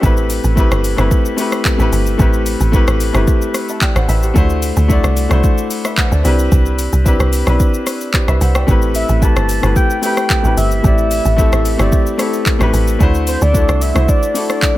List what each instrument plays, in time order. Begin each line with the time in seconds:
Already playing: grand piano C5
0.01 log drum bass A1, grand piano A3 C4 E4 G4, kick, shaker
0.05 grand piano B4
0.17 shaker
0.30 open hi-hat, shaker
0.44 log drum bass A1, shaker
0.55 grand piano A3 C4 E4 G4, kick, shaker
0.59 grand piano B4
0.71 log drum bass G1, cross-stick, shaker
0.84 open hi-hat, shaker
0.96 log drum bass G1, grand piano A3 C4 E4 G4 B4, cross-stick, shaker
1.11 kick, shaker
1.25 shaker
1.37 grand piano A3 C4 E4 G4 B4, open hi-hat, shaker
1.52 cross-stick, shaker
1.65 kick, clap, shaker
1.78 log drum bass A1, grand piano A3 C4 E4 G4 B4, shaker
1.92 log drum bass G1, open hi-hat, shaker
2.06 shaker
2.18 log drum bass A1, grand piano A3 C4 E4 G4, kick, shaker
2.22 grand piano B4
2.33 shaker
2.46 open hi-hat, shaker
2.60 log drum bass A1, shaker
2.72 grand piano A3 C4 E4 G4 B4, kick, shaker
2.87 log drum bass A1, cross-stick, shaker
3.00 open hi-hat, shaker
3.13 log drum bass G1, grand piano A3 C4 E4 G4 B4, cross-stick, shaker
3.27 kick, shaker
3.42 shaker
3.54 cross-stick, open hi-hat, shaker
3.69 grand piano E5 A5, shaker
3.81 grand piano D5 G5, kick, clap, shaker
3.96 log drum bass A1, grand piano C5 F#5, cross-stick, shaker
4.09 log drum bass A1, grand piano B4 E5, open hi-hat, shaker
4.23 grand piano G4 C5, shaker
4.34 log drum bass D2, grand piano A3 D4 E4 F#4 C5, kick, shaker
4.50 shaker
4.62 open hi-hat, shaker
4.77 log drum bass D2, shaker
4.88 grand piano A3 D4 E4 F#4, kick, shaker
4.92 grand piano D5
5.04 log drum bass C2, cross-stick, shaker
5.17 open hi-hat, shaker
5.29 log drum bass C2, grand piano A3 D4 E4 F#4, cross-stick, shaker
5.33 grand piano C5
5.44 kick, shaker
5.58 shaker
5.71 open hi-hat, shaker
5.85 grand piano B4 E5, cross-stick, shaker
5.97 grand piano C5 F#5, kick, clap, shaker
6.12 log drum bass D2, grand piano A4 D5, shaker
6.23 log drum bass C2, grand piano C4 D4 E4 G4 B4, open hi-hat, shaker
6.39 shaker
6.52 log drum bass C2, kick, shaker
6.66 shaker
6.79 open hi-hat, shaker
6.93 log drum bass C2, shaker
7.04 grand piano C4 D4 E4 G4 B4, kick, shaker
7.20 log drum bass C2, cross-stick, shaker
7.33 open hi-hat, shaker
7.45 log drum bass B1, grand piano C4 D4 E4 G4, cross-stick, shaker
7.49 grand piano B4
7.60 kick, shaker
7.74 shaker
7.87 cross-stick, open hi-hat, shaker
8.01 shaker
8.14 grand piano G4 C5, kick, clap, shaker
8.28 log drum bass C2, grand piano B4 E5, cross-stick, shaker
8.41 log drum bass C2, grand piano C5 F#5, open hi-hat, shaker
8.55 grand piano D5 G5, cross-stick, shaker
8.67 log drum bass A1, grand piano A3 C4 E4 G4 B4, kick, shaker
8.82 shaker
8.95 soft synth lead E5, open hi-hat, shaker
9.09 log drum bass A1, shaker
9.20 grand piano A3 C4 E4 G4 B4, soft synth lead A5, kick, shaker
9.36 log drum bass G1, cross-stick, shaker
9.49 open hi-hat, shaker
9.61 log drum bass G1, grand piano A3 C4 E4 G4 B4, cross-stick, shaker
9.76 soft synth lead G5, kick, shaker
9.90 shaker
10.01 grand piano A3 C4 E4 G4, soft synth lead G5, open hi-hat, shaker
10.05 grand piano B4
10.17 cross-stick, shaker
10.30 kick, clap, shaker
10.43 log drum bass A1, grand piano A3 C4 E4 G4 B4, shaker
10.57 log drum bass G1, soft synth lead E5, open hi-hat, shaker
10.71 shaker
10.83 log drum bass A1, grand piano A3 C4 E4 G4 D5, kick, shaker
10.98 shaker
11.11 open hi-hat, shaker
11.25 log drum bass A1, shaker
11.36 grand piano A3 C4 E4 G4, kick, shaker
11.40 grand piano A4
11.52 log drum bass A1, cross-stick, shaker
11.65 open hi-hat, shaker
11.77 log drum bass G1, grand piano A3 C4 E4 G4 D5, cross-stick, shaker
11.92 kick, shaker
12.06 shaker
12.18 grand piano A3 C4 E4 G4, cross-stick, open hi-hat, shaker
12.22 grand piano A4
12.33 shaker
12.46 kick, clap, shaker
12.59 log drum bass A1, grand piano A3 C4 E4 G4, cross-stick, shaker
12.63 grand piano B4
12.74 log drum bass A1, open hi-hat, shaker
12.87 shaker
12.99 log drum bass D2, grand piano A3 D4 E4 F#4 C5, kick, shaker
13.14 shaker
13.27 soft synth lead C5, open hi-hat, shaker
13.41 log drum bass D2, soft synth lead D5, shaker
13.53 grand piano A3 D4 E4 F#4, kick, shaker
13.57 grand piano A4
13.69 log drum bass C2, cross-stick, shaker
13.81 soft synth lead E5, open hi-hat, shaker
13.94 log drum bass C2, grand piano A3 D4 E4 F#4 C5, cross-stick, shaker
14.08 soft synth lead D5, kick, shaker
14.23 shaker
14.34 grand piano A3 D4 E4 F#4, open hi-hat, shaker
14.38 grand piano A4
14.50 soft synth lead D5, cross-stick, shaker
14.62 kick, clap, shaker